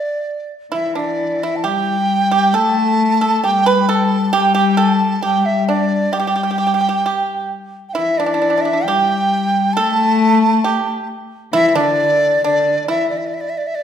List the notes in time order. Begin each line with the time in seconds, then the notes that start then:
Already playing: D5
0.72 E3 E4 E5
0.95 D4 D5
1.43 E4 E5
1.56 A5
1.64 G3 G4 G5
2.31 G4
2.52 A3 A4 A5
3.21 A4
3.43 G3 G4 G5
3.66 B4 B5
3.89 A4 A5
3.96 G5
4.05 A5
4.33 G3 G4 G5
4.54 G4 G5
4.77 A4 A5
5.22 G3 G4 G5
5.45 E5
5.68 D4 D5
6.12 G3 G4 G5
6.20 G4
6.27 G4
6.36 G4
6.43 G4
6.51 G4
6.58 G4
6.67 G4
6.74 G4
6.81 G4
6.89 G4
7.06 G4
7.89 G5
7.94 E3 E4 E5
8.18 D4 D5
8.26 D4
8.34 D4
8.42 D4
8.50 D4
8.57 D4 E5
8.65 D4
8.73 D4
8.84 G3 G4 G5
9.73 A3 A4 A5
10.64 G4
11.52 E3 E4 E5
11.69 E5
11.74 D3 D4 D5
12.43 D3 D4 D5
12.87 E3 E4 E5
13.10 D5
13.18 E5
13.27 D5
13.34 E5
13.41 D5
13.49 E5
13.58 D5
13.67 E5
13.75 D5